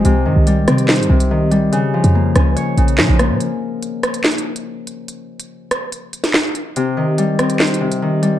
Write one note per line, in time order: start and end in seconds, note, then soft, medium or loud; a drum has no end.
0.00 0.67 C4 medium
0.00 0.88 C5 loud
0.05 0.27 C2 loud
0.05 0.31 C3 loud
0.05 closed hi-hat medium
0.26 0.36 G2 loud
0.26 1.15 D#3 medium
0.36 0.59 C2 loud
0.47 1.36 G3 medium
0.47 closed hi-hat medium
0.57 0.67 C#2 loud
0.68 1.01 C3 loud
0.68 1.78 C4 medium
0.68 cross-stick medium
0.68 closed hi-hat medium
0.78 closed hi-hat medium
0.89 1.78 C5 medium
0.89 snare loud
0.89 clap medium
0.89 closed hi-hat medium
0.96 1.09 G2 loud
0.96 closed hi-hat medium
1.03 closed hi-hat medium
1.09 1.70 C2 loud
1.09 1.36 C3 medium
1.20 closed hi-hat medium
1.31 1.78 D#3 medium
1.51 1.78 G3 medium
1.51 closed hi-hat medium
1.72 2.77 C#3 loud
1.72 closed hi-hat medium
1.94 2.83 F3 medium
2.04 2.34 F2 loud
2.04 closed hi-hat medium
2.15 3.19 A#3 medium
2.35 2.56 C#2 loud
2.35 5.25 C#4 medium
2.35 cross-stick medium
2.35 closed hi-hat medium
2.56 4.48 C#5 loud
2.56 closed hi-hat medium
2.78 3.00 A#1 loud
2.78 3.45 C#3 medium
2.78 closed hi-hat medium
2.88 closed hi-hat medium
2.98 3.08 A#2 medium
2.98 3.45 F3 medium
2.98 snare loud
2.98 clap loud
3.09 3.31 A#1 loud
3.19 6.41 A#3 medium
3.19 cross-stick medium
3.19 closed hi-hat medium
3.30 3.40 A#2 loud
3.41 closed hi-hat medium
3.83 closed hi-hat medium
4.03 cross-stick medium
4.03 closed hi-hat medium
4.14 closed hi-hat medium
4.24 snare loud
4.24 clap medium
4.24 closed hi-hat soft
4.31 closed hi-hat medium
4.38 closed hi-hat medium
4.56 closed hi-hat medium
4.87 closed hi-hat medium
5.08 closed hi-hat medium
5.40 closed hi-hat medium
5.71 cross-stick medium
5.71 closed hi-hat medium
5.92 closed hi-hat medium
6.13 closed hi-hat medium
6.24 snare medium
6.24 closed hi-hat medium
6.34 snare loud
6.34 clap loud
6.55 closed hi-hat medium
6.76 7.02 C3 loud
6.76 closed hi-hat medium
6.97 7.86 D#3 medium
7.18 8.07 G3 medium
7.18 closed hi-hat medium
7.39 8.39 C4 medium
7.39 cross-stick medium
7.39 closed hi-hat medium
7.50 closed hi-hat medium
7.60 8.39 C5 loud
7.60 snare loud
7.60 clap medium
7.60 closed hi-hat soft
7.67 closed hi-hat medium
7.74 closed hi-hat medium
7.81 8.07 C3 medium
7.92 closed hi-hat medium
8.02 8.39 D#3 medium
8.22 8.39 G3 medium
8.22 closed hi-hat medium